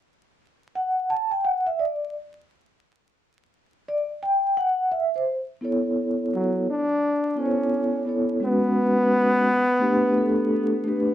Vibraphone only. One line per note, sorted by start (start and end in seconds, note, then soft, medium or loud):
0.75 1.11 F#5 medium
1.10 1.30 A5 loud
1.31 1.45 G5 medium
1.45 1.65 F#5 loud
1.66 1.72 E5 medium
1.79 2.12 D5 medium
3.88 4.04 D5 medium
4.23 4.59 G5 loud
4.57 4.94 F#5 loud
4.92 5.16 E5 medium
5.16 5.31 C5 medium
5.61 6.67 B3 medium
5.61 6.67 E4 medium
5.61 6.68 A4 medium
5.61 6.68 C#5 medium
7.35 7.93 B3 medium
7.35 7.93 E4 medium
7.35 7.94 A4 medium
7.35 7.46 C5 medium
7.46 7.98 C#5 medium
8.05 8.34 B3 medium
8.05 8.35 E4 medium
8.05 8.36 A4 medium
8.05 8.36 C#5 medium
8.40 9.46 G#3 medium
8.40 9.46 C#4 medium
8.40 9.47 F#4 medium
8.40 9.47 B4 medium
9.79 10.10 A3 medium
9.79 10.11 D4 medium
9.79 10.11 G4 medium
9.79 10.12 B4 loud
10.14 10.72 A3 medium
10.14 10.72 D4 medium
10.14 10.73 G4 medium
10.14 10.74 A4 medium
10.84 11.13 A3 medium
10.84 11.14 D4 medium
10.84 11.14 G4 medium
10.84 11.14 B4 medium